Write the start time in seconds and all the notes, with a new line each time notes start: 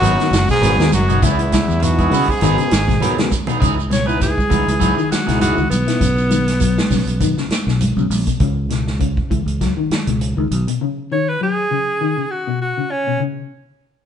Already playing: F#2 F#3 F#4
0.01 G#1 F#3 B3 D#4 F#4 G#4 A#4, closed hi-hat, high conga, shekere
0.17 D#3, muted clean electric guitar stroke, snare, closed hi-hat
0.21 shekere
0.31 F#1, muted clean electric guitar stroke, snare, closed hi-hat, shekere
0.48 G#2 B2 G#3 G#4, kick, closed hi-hat, shekere
0.61 G#1 F#3 B3 D#4 F#4 G#4 A#4, snare, closed hi-hat, high conga, shekere
0.77 D#2 D#3, muted clean electric guitar stroke, snare, closed hi-hat, high conga, shekere
0.92 F#1 F#2 F#3 F#4, muted clean electric guitar stroke, closed hi-hat, high conga, shekere
1.08 B2 B3 D#4 G#4, closed hi-hat, shekere
1.22 C#2 E2 C#3 E3 B3 E4 G#4 B4 D#5, kick, closed hi-hat, high conga, low conga, shekere
1.39 muted clean electric guitar stroke, closed hi-hat, shekere
1.52 E3, muted clean electric guitar stroke, kick, snare, closed hi-hat, high conga, shekere
1.68 E2, shekere
1.80 B2 E3 F#3 D#4 E4 F#4 B4, muted clean electric guitar stroke, closed hi-hat, high conga, shekere
1.98 E4 G#4, kick, closed hi-hat, high conga, shekere
2.11 C#3 B3 E4 G#4, open hi-hat, high conga, low conga, shekere
2.27 G#2 G#3 G#4, muted clean electric guitar stroke, kick, shekere
2.41 G#1 D#3 F#3 B3 D#4 F#4 G#4 A#4, snare, closed hi-hat, high conga, shekere
2.58 C#3, muted clean electric guitar stroke, closed hi-hat, shekere
2.71 G#1, muted clean electric guitar stroke, snare, closed hi-hat, high conga, shekere
2.87 B2, kick, snare, closed hi-hat, high conga, shekere
3.00 F#3 B3 D#4 F#4 G#4 A#4, snare, closed hi-hat, low conga, shekere
3.17 C#3, muted clean electric guitar stroke, snare, closed hi-hat, low conga, shekere
3.30 muted clean electric guitar stroke, kick, closed hi-hat, low conga, shekere
3.47 B2 B3 D#4 G#4, closed hi-hat, low conga, shekere
3.60 C#2 C#3 E3 D#4 G#4, muted clean electric guitar stroke, kick, closed hi-hat, high conga, low conga, shekere
3.76 muted clean electric guitar stroke, shekere
3.90 B2 C#5, muted clean electric guitar stroke, snare, closed hi-hat, high conga, shekere
4.06 B3 D#4 E4 G#4 B4, shekere
4.20 G#4, muted clean electric guitar stroke, kick, snare, closed hi-hat, high conga, shekere
4.37 kick, high conga, shekere
4.49 C#2 E3 B3 D#4, muted clean electric guitar stroke, kick, closed hi-hat, high conga, low conga, shekere
4.66 C#2 D#4 E4 B4, muted clean electric guitar stroke, closed hi-hat, shekere
4.80 E3 F#3 B3 D#4 G#4, kick, closed hi-hat, shekere
4.96 D#3, muted clean electric guitar stroke, shekere
5.10 F#4, muted clean electric guitar stroke, muted fingered electric bass stroke, snare, closed hi-hat, shekere
5.26 C#2 B2 B3 D#4 E4 G#4, snare, closed hi-hat, shekere
5.40 E3 B3 D#4 F#4 G#4, closed hi-hat, high conga, shekere
5.57 C#2 D#3, muted clean electric guitar stroke, high conga, shekere
5.70 B1 B3, muted clean electric guitar stroke, closed hi-hat, high conga, shekere
5.87 B2 D#4 E4 B4, snare, closed hi-hat, shekere
6.00 B1 C#3, kick, closed hi-hat, high conga, low conga, shekere
6.18 shekere
6.30 D#3, closed hi-hat, high conga, shekere
6.48 snare, closed hi-hat, shekere
6.60 F#3, kick, closed hi-hat, shekere
6.78 snare, high conga, shekere
6.90 B1 C#3, kick, snare, open hi-hat, high conga, low conga, shekere
7.07 B1, closed hi-hat, shekere
7.20 D#3, kick, closed hi-hat, high conga, shekere
7.37 C#3, snare, shekere
7.50 muted fingered electric bass stroke, snare, closed hi-hat, shekere
7.67 B1 B2, snare, shekere
7.81 closed hi-hat, high conga, shekere
7.97 B1 C#3, high conga, shekere
8.10 A#1, open hi-hat, high conga, shekere
8.27 B2, kick, closed hi-hat, shekere
8.40 C#2 C#3, kick, closed hi-hat
8.70 B2, snare, closed hi-hat
8.87 snare
8.99 C#3, kick, closed hi-hat
9.17 kick
9.30 C#2 E3, kick, closed hi-hat
9.46 C#2, closed hi-hat
9.61 F#3, kick, snare, closed hi-hat
9.77 D#3
9.90 muted fingered electric bass stroke, snare, closed hi-hat
10.07 C#2 B2, closed hi-hat
10.21 closed hi-hat
10.37 C#2 D#3
10.51 B1, closed hi-hat
10.68 B2, closed hi-hat
10.81 C#3
11.12 D#3 C#5
11.29 B4
11.41 F#3 G#4
11.71 C#3
12.01 D#3
12.17 C#3
12.31 F#4
12.47 B2
12.62 F#4
12.78 C#3
12.91 C#4
13.07 B2
13.20 C#3